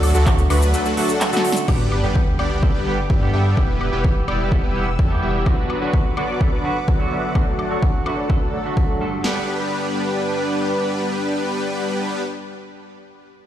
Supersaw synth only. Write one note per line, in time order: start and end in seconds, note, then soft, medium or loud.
0.00 0.12 F#3 medium
0.00 0.12 A3 medium
0.00 0.12 D4 medium
0.00 0.12 F#4 medium
0.00 0.12 A4 loud
0.15 0.30 F#3 loud
0.15 0.30 A3 loud
0.15 0.30 D4 medium
0.15 0.30 F#4 medium
0.15 0.30 A4 loud
0.50 0.83 F#3 medium
0.50 0.83 A3 medium
0.50 0.83 D4 medium
0.50 0.83 F#4 medium
0.50 0.83 B4 loud
0.85 0.95 F#3 medium
0.85 0.95 A3 medium
0.85 0.95 D4 medium
0.85 0.95 F#4 medium
0.85 0.95 A4 medium
0.97 1.30 F#3 medium
0.97 1.30 A3 medium
0.97 1.30 D4 medium
0.97 1.30 F#4 medium
0.97 1.30 A4 medium
1.33 1.49 F#3 medium
1.33 1.49 A3 medium
1.33 1.49 D4 medium
1.33 1.49 F#4 medium
1.33 1.49 A4 medium
1.68 2.01 G3 medium
1.68 2.01 B3 medium
1.68 2.01 D4 medium
1.68 2.01 G4 medium
1.68 2.01 B4 medium
2.03 2.19 G3 loud
2.03 2.19 B3 medium
2.03 2.19 D4 medium
2.03 2.19 G4 medium
2.03 2.19 B4 loud
2.39 2.72 G3 medium
2.39 2.72 B3 medium
2.39 2.72 D4 medium
2.39 2.72 G4 medium
2.39 2.72 D5 medium
2.74 2.95 G3 medium
2.74 2.95 B3 medium
2.74 2.95 D4 medium
2.74 2.95 G4 medium
2.74 2.95 B4 medium
3.10 3.31 G3 medium
3.10 3.31 B3 medium
3.10 3.31 D4 medium
3.10 3.31 G4 medium
3.10 3.31 A4 medium
3.33 3.54 G3 medium
3.33 3.54 B3 medium
3.33 3.54 D4 medium
3.33 3.54 G4 medium
3.33 3.54 E5 medium
3.57 3.90 G3 medium
3.57 3.90 B3 medium
3.57 3.90 E4 medium
3.57 3.90 G4 medium
3.57 3.90 B4 medium
3.92 4.08 G3 loud
3.92 4.08 B3 medium
3.92 4.08 E4 medium
3.92 4.08 G4 medium
3.92 4.08 B4 loud
4.28 4.61 G3 medium
4.28 4.61 B3 medium
4.28 4.61 E4 medium
4.28 4.61 G4 medium
4.28 4.61 D5 medium
4.63 4.84 G3 medium
4.63 4.84 B3 medium
4.63 4.84 E4 medium
4.63 4.84 G4 medium
4.63 4.84 B4 medium
4.99 5.20 G3 medium
4.99 5.20 B3 medium
4.99 5.20 E4 medium
4.99 5.20 G4 medium
4.99 5.20 A4 medium
5.23 5.43 G3 medium
5.23 5.43 B3 medium
5.23 5.43 E4 medium
5.23 5.43 G4 medium
5.23 5.43 E5 medium
5.46 5.79 F#3 medium
5.46 5.79 B3 medium
5.46 5.79 D4 medium
5.46 5.79 F#4 medium
5.46 5.79 B4 medium
5.82 5.97 F#3 medium
5.82 5.97 B3 medium
5.82 5.97 D4 medium
5.82 5.97 F#4 medium
5.82 5.97 B4 loud
6.17 6.50 F#3 medium
6.17 6.50 B3 medium
6.17 6.50 D4 medium
6.17 6.50 F#4 medium
6.17 6.50 D5 medium
6.53 6.73 F#3 medium
6.53 6.73 B3 medium
6.53 6.73 D4 medium
6.53 6.73 F#4 medium
6.53 6.73 B4 medium
6.88 7.09 F#3 medium
6.88 7.09 B3 medium
6.88 7.09 D4 medium
6.88 7.09 F#4 medium
6.88 7.09 A4 medium
7.12 7.32 F#3 medium
7.12 7.32 B3 medium
7.12 7.32 D4 medium
7.12 7.32 F#4 medium
7.12 7.32 E5 medium
7.35 7.68 F#3 medium
7.35 7.68 A3 medium
7.35 7.68 D4 medium
7.35 7.68 F#4 medium
7.35 7.68 A4 medium
7.71 7.86 F#3 medium
7.71 7.86 A3 medium
7.71 7.86 D4 medium
7.71 7.86 F#4 medium
7.71 7.86 A4 loud
8.06 8.39 F#3 medium
8.06 8.39 A3 medium
8.06 8.39 D4 medium
8.06 8.39 F#4 medium
8.06 8.39 B4 medium
8.42 8.51 F#3 medium
8.42 8.51 A3 medium
8.42 8.51 D4 medium
8.42 8.51 F#4 medium
8.42 8.51 A4 medium
8.53 8.86 F#3 medium
8.53 8.86 A3 medium
8.53 8.86 D4 medium
8.53 8.86 F#4 medium
8.53 8.86 A4 medium
8.89 9.05 F#3 medium
8.89 9.05 A3 medium
8.89 9.05 D4 medium
8.89 9.05 F#4 medium
8.89 9.05 A4 medium
9.24 12.22 G3 medium
9.24 12.22 B3 medium
9.24 12.22 D4 medium
9.24 12.22 G4 medium
9.24 12.22 B4 medium